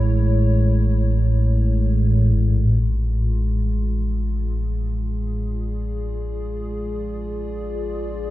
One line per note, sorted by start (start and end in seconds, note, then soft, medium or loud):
0.00 2.35 A1 medium
0.00 2.36 A2 medium
0.00 2.40 G#3 medium
0.00 2.37 E4 medium
0.00 2.41 G#4 medium
0.00 2.38 C#5 medium
2.34 8.30 A1 medium
2.34 8.30 A2 medium
2.34 8.30 F4 medium
3.44 8.30 G#4 medium
5.22 8.30 D5 medium